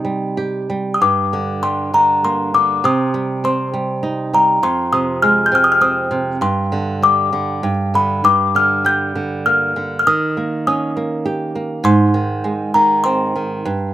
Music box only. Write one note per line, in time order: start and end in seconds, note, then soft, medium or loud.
0.00 0.33 C6 medium
0.94 1.01 D#6 medium
1.02 1.59 D6 medium
1.63 1.77 C6 medium
1.94 2.25 A#5 medium
2.25 2.55 C6 medium
2.54 2.82 D6 medium
2.85 3.46 D#6 medium
3.45 4.36 C6 medium
4.34 4.64 A#5 medium
4.63 4.93 C6 medium
4.93 5.23 D#6 medium
5.22 5.45 F6 medium
5.46 5.55 G6 medium
5.55 5.64 F6 medium
5.64 5.72 D#6 medium
5.72 5.81 F6 medium
5.82 6.37 D#6 medium
6.42 7.04 C6 medium
7.03 7.97 D6 medium
7.95 8.23 B5 medium
8.25 8.56 D6 medium
8.56 8.87 F6 medium
8.86 9.48 G6 loud
9.46 9.98 F6 medium
9.99 10.06 F6 medium
10.07 10.63 D#6 loud
10.67 11.52 D#6 medium
11.85 12.40 C6 loud
12.74 13.06 A#5 medium
13.04 13.94 C6 loud